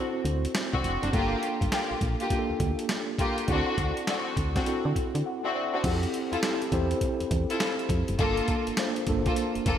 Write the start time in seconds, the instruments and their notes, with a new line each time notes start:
Already playing: tine electric piano C4 E4 F#4 A4 C5
0.25 fm bass D2, closed hi-hat
0.45 closed hi-hat
0.55 snare, clap, closed hi-hat
0.73 fm bass C2, string section C4 D4 F#4, kick
0.84 fm bass F1, closed hi-hat
1.02 fm bass F#1, string section C4 D4 F#4, closed hi-hat
1.13 fm bass G1, string section A#3 F4 G4, tine electric piano A#3 D4 F4 A4, kick, closed hi-hat
1.43 closed hi-hat
1.61 fm bass G1, kick, closed hi-hat
1.72 string section A#3 F4 G4, snare, clap, closed hi-hat
1.91 fm bass A#1
2.01 fm bass A#1, kick, closed hi-hat
2.20 string section A#3 F4 G4, closed hi-hat
2.30 tine electric piano A#3 D4 F4 G4, kick, closed hi-hat
2.39 tine electric piano A4
2.50 fm bass D2
2.60 fm bass D2, kick, closed hi-hat
2.79 closed hi-hat
2.89 snare, clap, closed hi-hat
3.19 string section A#3 F4 G4, kick, closed hi-hat
3.38 closed hi-hat
3.48 fm bass D2, string section C4 D4 F#4, tine electric piano C4 E4 F#4 G#4, kick, closed hi-hat
3.56 tine electric piano A4
3.78 fm bass D2, kick, closed hi-hat
3.97 closed hi-hat
4.07 string section C4 D4 F#4, snare, clap, closed hi-hat
4.37 fm bass D2, kick, closed hi-hat
4.56 string section C4 D4 F#4, kick, snare, closed hi-hat
4.66 tine electric piano C4 E4 F#4 A4, closed hi-hat
4.85 fm bass D3
4.96 kick, closed hi-hat
5.15 fm bass D3, closed hi-hat
5.26 tine electric piano F#5
5.43 string section C4 D4 F#4, tine electric piano E5
5.56 tine electric piano D5
5.73 string section C4 D4 F#4, tine electric piano C5
5.84 fm bass F2, tine electric piano C4 E4 G4 G#4, kick, closed hi-hat, crash
5.92 tine electric piano A4
6.03 closed hi-hat
6.14 closed hi-hat
6.32 fm bass E2, string section E4 F4 A4, closed hi-hat
6.43 tine electric piano C4 E4 G4 A4, snare, clap, closed hi-hat
6.62 closed hi-hat
6.72 fm bass E2, tine electric piano C4 E4 G4 C5, kick, closed hi-hat
6.91 closed hi-hat
7.01 kick, closed hi-hat
7.20 fm bass E2, closed hi-hat
7.31 fm bass E2, kick, closed hi-hat
7.49 string section E4 F4 A4, closed hi-hat
7.60 snare, clap, closed hi-hat
7.79 closed hi-hat
7.89 fm bass F2, kick, closed hi-hat
8.08 fm bass F#1, closed hi-hat
8.19 fm bass G1, string section A#3 F4 A4, tine electric piano A#3 D4 F4 A4, kick, closed hi-hat
8.37 closed hi-hat
8.48 kick, closed hi-hat
8.67 fm bass G1, closed hi-hat
8.77 tine electric piano A#3 D4 F4 C5, snare, clap, closed hi-hat
8.96 closed hi-hat
9.07 fm bass G1, tine electric piano A#3 D4 F4 A4, kick, closed hi-hat
9.26 string section A#3 F4 A4, kick, closed hi-hat
9.36 closed hi-hat
9.55 fm bass F1, closed hi-hat
9.66 fm bass F1, string section A#3 F4 A4, kick, closed hi-hat